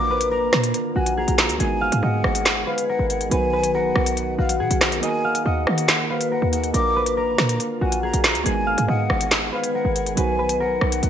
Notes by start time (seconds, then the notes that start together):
Already playing: A#1 D3 A#3 D4 F4 A#4 D#5 D6, downlifter
0.10 B4
0.21 closed hi-hat
0.31 A#4 A#5
0.53 A#2, cross-stick, snare
0.64 closed hi-hat
0.74 closed hi-hat
0.96 A#1 F#4 G#5
1.06 closed hi-hat
1.17 G#4 A#5
1.28 A#1, closed hi-hat
1.38 A#4 A#5, snare, clap, closed hi-hat
1.49 D2, closed hi-hat
1.58 G#1 D#3 G#3 B3 D#4 G#4 G#5, closed hi-hat
1.81 F5
1.92 G#2, closed hi-hat
2.02 G#2 D#5 F#5
2.24 G#1, cross-stick
2.35 closed hi-hat
2.46 snare, clap, closed hi-hat
2.67 B4 F5
2.78 closed hi-hat
2.89 A#4 F#5
2.99 G#1
3.10 F#5, closed hi-hat
3.21 closed hi-hat
3.30 B1 F#3 B3 D#4 F#4 B4 G#5, closed hi-hat
3.53 B4
3.64 closed hi-hat
3.74 A#4 F#5
3.96 B1, cross-stick
4.06 closed hi-hat
4.17 closed hi-hat
4.39 A#1 F#4 F5
4.49 closed hi-hat
4.60 B2 G#4 F#5
4.71 B1, closed hi-hat
4.81 A#4 F#5, cross-stick, snare, clap, closed hi-hat
4.92 closed hi-hat
5.01 A#3 D#4 F#4 A#4 D#5 G#5, closed hi-hat
5.24 F5
5.35 closed hi-hat
5.46 D#2 D#5 F#5
5.67 D#3, cross-stick
5.78 closed hi-hat
5.88 snare, clap, closed hi-hat
6.10 B4 F5
6.21 closed hi-hat
6.31 A#4 F#5
6.42 D#2
6.51 A#3 D#4 F#4 G#4 F#5, closed hi-hat
6.64 closed hi-hat
6.72 A#1 D3 A#3 D4 F4 A#4 D6, closed hi-hat
6.96 B4
7.06 closed hi-hat
7.17 A#4 A#5
7.38 A#2, cross-stick, snare
7.49 closed hi-hat
7.60 closed hi-hat
7.81 A#1 F#4 G#5
7.92 closed hi-hat
8.03 G#4 A#5
8.14 A#1, closed hi-hat
8.24 A#4 A#5, snare, clap, closed hi-hat
8.35 D2, closed hi-hat
8.43 G#1 D#3 G#3 B3 D#4 G#4 G#5, closed hi-hat
8.67 F5
8.78 G#2, closed hi-hat
8.88 G#2 D#5 F#5
9.10 G#1, cross-stick
9.21 closed hi-hat
9.31 snare, clap, closed hi-hat
9.53 B4 F5
9.64 closed hi-hat
9.74 A#4 F#5
9.85 G#1
9.96 F#5, closed hi-hat
10.06 closed hi-hat
10.15 B1 F#3 B3 D#4 F#4 B4 G#5, closed hi-hat
10.39 B4
10.49 closed hi-hat
10.60 A#4 F#5
10.81 B1, cross-stick
10.92 closed hi-hat
11.03 B1, closed hi-hat